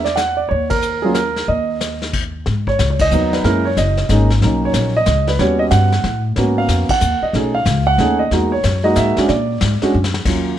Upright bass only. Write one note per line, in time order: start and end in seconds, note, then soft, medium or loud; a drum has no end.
0.00 0.46 E2 medium
0.51 1.45 D#2 medium
1.48 2.42 D#2 medium
2.47 2.78 G#2 medium
2.79 3.10 C#2 medium
3.11 3.43 D#2 medium
3.44 3.76 F#2 medium
3.77 4.08 F#1 medium
4.09 4.41 G#1 medium
4.41 4.73 B1 medium
4.74 5.06 A#1 medium
5.07 5.38 C#2 medium
5.39 5.71 D#2 medium
5.71 6.03 G2 medium
6.04 6.35 A2 medium
6.37 6.68 G#2 medium
6.68 6.88 F2 medium
6.90 muted upright bass stroke soft
7.01 7.21 D#2 medium
7.22 muted upright bass stroke soft
7.33 7.65 B1 medium
7.66 7.98 C#2 medium
7.98 8.30 D#2 medium
8.31 8.63 E2 medium
8.64 8.95 F#2 medium
8.96 9.16 G#2 medium
9.18 muted upright bass stroke soft
9.29 9.60 A#2 medium
9.62 9.81 G#2 medium
9.83 muted upright bass stroke soft
9.94 10.25 F#2 medium
10.25 10.57 D#2 medium